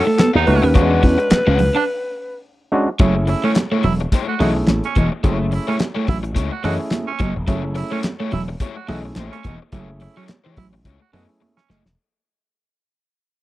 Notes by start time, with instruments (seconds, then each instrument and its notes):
Already playing: alto saxophone A4
0.05 clean electric guitar A3, muted overdriven electric guitar stroke
0.18 clean electric guitar B3, alto saxophone A4, muted overdriven electric guitar stroke, snare, clap, closed hi-hat, high conga
0.34 slap bass D#2, overdriven electric guitar D#4 A4 C#5 F#5, baritone saxophone D#4
0.46 slap bass C#2, clav A3 C#4 D#4 F#4, alto saxophone B4, muted overdriven electric guitar stroke, muted clean electric guitar stroke, open hi-hat, high conga
0.63 slap bass D#2, clean electric guitar C#4, alto saxophone B4, muted overdriven electric guitar stroke
0.74 slap bass E2, clav F#3 C#4 D4 F#4, overdriven electric guitar C#4 G4 C5 F5, clean electric guitar D4, kick, closed hi-hat, muted conga
0.81 clav G#3
0.85 overdriven electric guitar D4 G#4 C#5 F#5
0.91 muted clean electric guitar stroke
1.03 slap bass E2, clean electric guitar C#4, kick, open hi-hat, muted conga
1.18 muted overdriven electric guitar stroke, closed hi-hat
1.30 muted overdriven electric guitar stroke, muted slap bass stroke, snare, clap, closed hi-hat, high conga
1.47 slap bass C#2, clean electric guitar C#4, overdriven electric guitar D4 G#4 C#5 F#5
1.59 muted clean electric guitar stroke, muted overdriven electric guitar stroke, open hi-hat, low conga
1.75 clean electric guitar D4, baritone saxophone D4, muted overdriven electric guitar stroke
2.72 clav G#3 C#4 D4 F#4
2.99 slap bass F#1, clean electric guitar F#3, clav A3 C#4 E4 G#4, overdriven electric guitar A3 E4 G#4 C#5, kick, closed hi-hat, muted conga
3.16 muted overdriven electric guitar stroke
3.27 baritone saxophone E4, muted clean electric guitar stroke, muted overdriven electric guitar stroke, open hi-hat, muted conga
3.44 clean electric guitar A3, overdriven electric guitar A3 E4 G#4 C#5, baritone saxophone C#4
3.55 muted clean electric guitar stroke, muted overdriven electric guitar stroke, snare, clap, closed hi-hat, high conga
3.72 clean electric guitar A3, overdriven electric guitar A3 E4 G#4 C#5
3.83 slap bass E1, clean electric guitar F#3, baritone saxophone E4, muted overdriven electric guitar stroke, open hi-hat
4.00 muted overdriven electric guitar stroke, closed hi-hat
4.12 overdriven electric guitar A3 E4 G#4 C#5, kick, closed hi-hat, muted conga
4.28 baritone saxophone F#4, muted overdriven electric guitar stroke
4.39 slap bass B1, clean electric guitar E3, clav A3 C#4 E4 G#4, overdriven electric guitar A3 E4 G#4 D#5, baritone saxophone F#4, open hi-hat, muted conga
4.57 muted overdriven electric guitar stroke
4.68 slap bass A1, muted overdriven electric guitar stroke, snare, clap, closed hi-hat, high conga
4.84 baritone saxophone C#4, closed hi-hat
4.95 slap bass E1, clean electric guitar E3, overdriven electric guitar A3 E4 G#4 D#5, kick, closed hi-hat, high conga
5.12 muted overdriven electric guitar stroke
5.23 slap bass F#1, clean electric guitar F#3, clav A3 C#4 E4 G#4, overdriven electric guitar A3 E4 G#4 C#5, kick, closed hi-hat, muted conga
5.39 muted overdriven electric guitar stroke
5.52 baritone saxophone E4, muted overdriven electric guitar stroke, muted clean electric guitar stroke, open hi-hat
5.67 clean electric guitar A3, overdriven electric guitar A3 E4 G#4 C#5, baritone saxophone C#4
5.79 muted overdriven electric guitar stroke, muted clean electric guitar stroke, snare, clap, closed hi-hat, high conga
5.95 overdriven electric guitar A3 E4 G#4 C#5, clean electric guitar A3
6.07 slap bass A1, clean electric guitar F#3, baritone saxophone E4, muted overdriven electric guitar stroke, kick, open hi-hat, low conga
6.23 muted overdriven electric guitar stroke, closed hi-hat
6.35 slap bass C#2, overdriven electric guitar A3 E4 G#4 C#5, kick, closed hi-hat, muted conga
6.52 baritone saxophone F#4, muted overdriven electric guitar stroke
6.64 slap bass F#2, clean electric guitar E3, clav A3 C#4 E4 G#4, overdriven electric guitar A3 E4 G#4 D#5, baritone saxophone F#4, open hi-hat, muted conga
6.80 muted overdriven electric guitar stroke
6.91 muted overdriven electric guitar stroke, snare, clap, closed hi-hat, high conga
7.07 baritone saxophone C#4
7.19 slap bass F#1, clean electric guitar F#3, overdriven electric guitar A3 E4 G#4 D#5, kick, closed hi-hat, high conga
7.36 slap bass E1, muted overdriven electric guitar stroke
7.47 slap bass F#1, clean electric guitar F#3, clav A3 C#4 E4 G#4, overdriven electric guitar A3 E4 G#4 C#5, kick, closed hi-hat, muted conga
7.64 muted overdriven electric guitar stroke
7.75 baritone saxophone E4, muted overdriven electric guitar stroke, muted clean electric guitar stroke, open hi-hat, muted conga
7.91 clean electric guitar A3, overdriven electric guitar A3 E4 G#4 C#5, baritone saxophone C#4
8.03 muted clean electric guitar stroke, muted overdriven electric guitar stroke, snare, clap, closed hi-hat, high conga
8.20 clean electric guitar A3, overdriven electric guitar A3 E4 G#4 C#5
8.31 slap bass E1, clean electric guitar F#3, baritone saxophone E4, muted overdriven electric guitar stroke, open hi-hat
8.49 muted overdriven electric guitar stroke
8.60 overdriven electric guitar A3 E4 G#4 C#5, kick, closed hi-hat, muted conga
8.76 baritone saxophone F#4, muted overdriven electric guitar stroke
8.88 slap bass B1, clean electric guitar E3, clav A3 C#4 E4 G#4, overdriven electric guitar A3 E4 G#4 D#5, baritone saxophone F#4, open hi-hat, muted conga
9.05 muted overdriven electric guitar stroke
9.16 slap bass A1, overdriven electric guitar A3 E4 G#4 C#5, snare, clap, closed hi-hat, high conga
9.32 baritone saxophone C#4, muted overdriven electric guitar stroke, closed hi-hat
9.44 slap bass E1, clean electric guitar E3, overdriven electric guitar A3 E4 G#4 D#5, kick, closed hi-hat, high conga
9.62 muted overdriven electric guitar stroke
9.72 slap bass F#1, clean electric guitar F#3, clav A3 C#4 E4 G4, overdriven electric guitar A3 E4 G#4 C#5, kick, closed hi-hat, muted conga
9.80 clav G#4
9.90 muted overdriven electric guitar stroke
10.00 baritone saxophone E4, muted overdriven electric guitar stroke, muted clean electric guitar stroke, open hi-hat
10.17 clean electric guitar F#3, overdriven electric guitar A3 E4 G#4 C#5, baritone saxophone C#4
10.28 muted overdriven electric guitar stroke, muted clean electric guitar stroke, snare, clap, closed hi-hat, high conga
10.44 clean electric guitar E3, overdriven electric guitar A3 E4 G#4 C#5
10.57 slap bass A1, clean electric guitar F#3, baritone saxophone E4, muted overdriven electric guitar stroke, kick, open hi-hat, low conga
10.73 muted overdriven electric guitar stroke
10.85 slap bass C#2, overdriven electric guitar A3 E4 G#4 C#5, kick, closed hi-hat, muted conga
11.01 baritone saxophone F#4, muted overdriven electric guitar stroke
11.13 slap bass F#2, clav A3 C#4 E4 G#4, overdriven electric guitar A3 E4 G#4 D#5, clean electric guitar B3, baritone saxophone F#4, open hi-hat, muted conga, low conga
11.29 muted overdriven electric guitar stroke
11.41 muted overdriven electric guitar stroke, high conga
11.57 baritone saxophone C#4, snare
11.69 slap bass F#1, overdriven electric guitar A3 E4 G#4 D#5, clean electric guitar A3, snare, high conga
11.85 slap bass E1, muted overdriven electric guitar stroke, snare